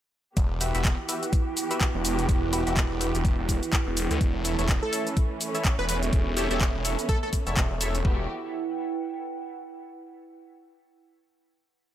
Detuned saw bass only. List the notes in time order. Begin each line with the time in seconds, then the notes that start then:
0.37 E1
0.75 E1
1.95 E1
2.29 E1
2.67 E1
2.91 E1
3.15 E1
3.39 E1
3.87 E1
4.11 D2
4.21 E1
4.59 E1
5.79 E1
6.13 E1
6.51 E1
6.75 E1
7.47 E1
7.71 E1
8.05 E1